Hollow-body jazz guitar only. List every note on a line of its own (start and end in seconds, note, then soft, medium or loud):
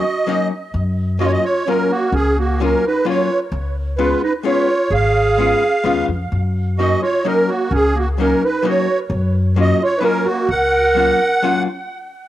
0.27 0.50 F#3 medium
0.27 0.50 A#3 soft
0.27 0.51 C#4 medium
0.27 0.51 D#4 medium
1.19 1.43 F#3 medium
1.19 1.44 A#3 soft
1.19 1.44 C#4 soft
1.19 1.44 F4 medium
1.67 1.90 F#3 soft
1.67 1.90 A#3 soft
1.67 1.91 C#4 medium
1.67 1.91 F4 soft
2.60 2.83 F#3 soft
2.60 2.83 A#3 soft
2.60 2.83 C#4 medium
2.60 2.84 F4 medium
3.05 3.28 F#3 medium
3.05 3.29 A#3 soft
3.05 3.29 C#4 soft
3.05 3.29 F4 medium
3.98 4.21 G#3 medium
3.98 4.22 B3 soft
3.98 4.21 C#4 medium
3.98 4.22 F4 medium
4.43 4.67 G#3 soft
4.43 4.67 B3 soft
4.43 4.68 C#4 medium
4.43 4.68 F4 medium
5.38 5.61 G#3 medium
5.38 5.61 B3 soft
5.38 5.62 C#4 soft
5.38 5.62 F4 medium
5.84 6.08 G#3 medium
5.84 6.08 B3 medium
5.84 6.09 C#4 medium
5.84 6.09 F4 medium
6.79 7.03 F#3 medium
6.79 7.03 A#3 soft
6.79 7.03 C#4 soft
6.79 7.03 D#4 medium
7.25 7.49 F#3 medium
7.25 7.49 A#3 soft
7.25 7.49 C#4 soft
7.25 7.49 D#4 medium
8.18 8.41 F#3 medium
8.18 8.42 A#3 medium
8.18 8.42 C#4 medium
8.18 8.43 D#4 medium
8.63 8.87 F#3 medium
8.63 8.87 A#3 medium
8.63 8.87 C#4 soft
8.63 8.88 D#4 medium
9.56 9.80 F#3 medium
9.56 9.80 A#3 medium
9.56 9.80 C#4 soft
9.56 9.80 F4 soft
10.01 10.25 F#3 medium
10.01 10.26 A#3 soft
10.01 10.26 C#4 medium
10.01 10.26 F4 medium
10.94 11.19 F#3 soft
10.94 11.19 A#3 medium
10.94 11.19 C#4 soft
10.94 11.20 F4 soft
11.42 11.66 F#3 medium
11.42 11.66 A#3 medium
11.42 11.67 C#4 medium
11.42 11.67 F4 medium